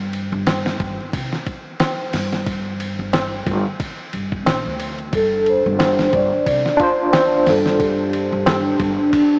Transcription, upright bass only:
0, 0, Header, 1, 2, 480
1, 0, Start_track
1, 0, Tempo, 666667
1, 1775, Time_signature, 4, 2, 24, 8
1, 6762, End_track
2, 0, Start_track
2, 0, Title_t, "Upright bass"
2, 0, Program_c, 0, 32
2, 0, Note_on_c, 0, 43, 80
2, 206, Note_off_c, 0, 43, 0
2, 231, Note_on_c, 0, 31, 92
2, 555, Note_off_c, 0, 31, 0
2, 575, Note_on_c, 0, 31, 101
2, 695, Note_off_c, 0, 31, 0
2, 815, Note_on_c, 0, 36, 81
2, 935, Note_off_c, 0, 36, 0
2, 1535, Note_on_c, 0, 43, 84
2, 2125, Note_off_c, 0, 43, 0
2, 2153, Note_on_c, 0, 31, 90
2, 2476, Note_off_c, 0, 31, 0
2, 2495, Note_on_c, 0, 31, 100
2, 2615, Note_off_c, 0, 31, 0
2, 2977, Note_on_c, 0, 31, 75
2, 3217, Note_off_c, 0, 31, 0
2, 3217, Note_on_c, 0, 34, 97
2, 3336, Note_off_c, 0, 34, 0
2, 3354, Note_on_c, 0, 38, 75
2, 3676, Note_off_c, 0, 38, 0
2, 3693, Note_on_c, 0, 31, 74
2, 4044, Note_off_c, 0, 31, 0
2, 4074, Note_on_c, 0, 31, 92
2, 4396, Note_off_c, 0, 31, 0
2, 4414, Note_on_c, 0, 31, 93
2, 4534, Note_off_c, 0, 31, 0
2, 4654, Note_on_c, 0, 36, 78
2, 4774, Note_off_c, 0, 36, 0
2, 5376, Note_on_c, 0, 43, 80
2, 5965, Note_off_c, 0, 43, 0
2, 5992, Note_on_c, 0, 31, 94
2, 6315, Note_off_c, 0, 31, 0
2, 6332, Note_on_c, 0, 31, 99
2, 6453, Note_off_c, 0, 31, 0
2, 6762, End_track
0, 0, End_of_file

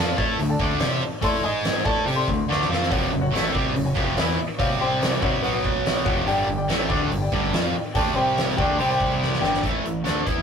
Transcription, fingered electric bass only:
0, 0, Header, 1, 3, 480
1, 0, Start_track
1, 0, Tempo, 420463
1, 1408, Time_signature, 4, 2, 24, 8
1, 11898, End_track
2, 0, Start_track
2, 0, Title_t, "Fingered electric bass"
2, 0, Program_c, 0, 33
2, 0, Note_on_c, 0, 41, 96
2, 180, Note_off_c, 0, 41, 0
2, 208, Note_on_c, 0, 45, 103
2, 426, Note_off_c, 0, 45, 0
2, 433, Note_on_c, 0, 38, 75
2, 663, Note_off_c, 0, 38, 0
2, 683, Note_on_c, 0, 38, 91
2, 908, Note_off_c, 0, 38, 0
2, 921, Note_on_c, 0, 48, 88
2, 1147, Note_off_c, 0, 48, 0
2, 1395, Note_on_c, 0, 45, 84
2, 1624, Note_off_c, 0, 45, 0
2, 1645, Note_on_c, 0, 44, 84
2, 2091, Note_off_c, 0, 44, 0
2, 2120, Note_on_c, 0, 45, 94
2, 2346, Note_off_c, 0, 45, 0
2, 2357, Note_on_c, 0, 48, 84
2, 2584, Note_off_c, 0, 48, 0
2, 2598, Note_on_c, 0, 38, 73
2, 2824, Note_off_c, 0, 38, 0
2, 2831, Note_on_c, 0, 38, 77
2, 3060, Note_off_c, 0, 38, 0
2, 3074, Note_on_c, 0, 41, 88
2, 3301, Note_off_c, 0, 41, 0
2, 3328, Note_on_c, 0, 29, 89
2, 3544, Note_off_c, 0, 29, 0
2, 3551, Note_on_c, 0, 29, 67
2, 3780, Note_off_c, 0, 29, 0
2, 3790, Note_on_c, 0, 33, 94
2, 4019, Note_off_c, 0, 33, 0
2, 4046, Note_on_c, 0, 36, 87
2, 4267, Note_off_c, 0, 36, 0
2, 4273, Note_on_c, 0, 29, 74
2, 4500, Note_off_c, 0, 29, 0
2, 4525, Note_on_c, 0, 29, 87
2, 4747, Note_off_c, 0, 29, 0
2, 4758, Note_on_c, 0, 40, 88
2, 4983, Note_off_c, 0, 40, 0
2, 5246, Note_on_c, 0, 36, 82
2, 5463, Note_off_c, 0, 36, 0
2, 5470, Note_on_c, 0, 36, 79
2, 5921, Note_off_c, 0, 36, 0
2, 5963, Note_on_c, 0, 36, 87
2, 6179, Note_off_c, 0, 36, 0
2, 6186, Note_on_c, 0, 35, 90
2, 6867, Note_off_c, 0, 35, 0
2, 6915, Note_on_c, 0, 29, 83
2, 7140, Note_off_c, 0, 29, 0
2, 7149, Note_on_c, 0, 31, 88
2, 7377, Note_off_c, 0, 31, 0
2, 7387, Note_on_c, 0, 31, 79
2, 7616, Note_off_c, 0, 31, 0
2, 7624, Note_on_c, 0, 33, 91
2, 7854, Note_off_c, 0, 33, 0
2, 7874, Note_on_c, 0, 38, 100
2, 8096, Note_off_c, 0, 38, 0
2, 8103, Note_on_c, 0, 31, 74
2, 8334, Note_off_c, 0, 31, 0
2, 8358, Note_on_c, 0, 31, 91
2, 8575, Note_off_c, 0, 31, 0
2, 8582, Note_on_c, 0, 41, 85
2, 8813, Note_off_c, 0, 41, 0
2, 9076, Note_on_c, 0, 38, 87
2, 9301, Note_off_c, 0, 38, 0
2, 9313, Note_on_c, 0, 36, 85
2, 9763, Note_off_c, 0, 36, 0
2, 9797, Note_on_c, 0, 38, 94
2, 10022, Note_off_c, 0, 38, 0
2, 10029, Note_on_c, 0, 36, 87
2, 10711, Note_off_c, 0, 36, 0
2, 10749, Note_on_c, 0, 31, 81
2, 10979, Note_off_c, 0, 31, 0
2, 10996, Note_on_c, 0, 33, 82
2, 11212, Note_off_c, 0, 33, 0
2, 11218, Note_on_c, 0, 33, 62
2, 11454, Note_off_c, 0, 33, 0
2, 11462, Note_on_c, 0, 38, 76
2, 11697, Note_off_c, 0, 38, 0
2, 11721, Note_on_c, 0, 40, 79
2, 11898, Note_off_c, 0, 40, 0
2, 11898, End_track
3, 0, Start_track
3, 0, Title_t, "Muted fingered electric bass strokes"
3, 1168, Note_on_c, 9, 29, 34
3, 1282, Note_off_c, 9, 29, 0
3, 4988, Note_on_c, 9, 29, 36
3, 5102, Note_off_c, 9, 29, 0
3, 8831, Note_on_c, 9, 29, 36
3, 8945, Note_off_c, 9, 29, 0
3, 11898, End_track
0, 0, End_of_file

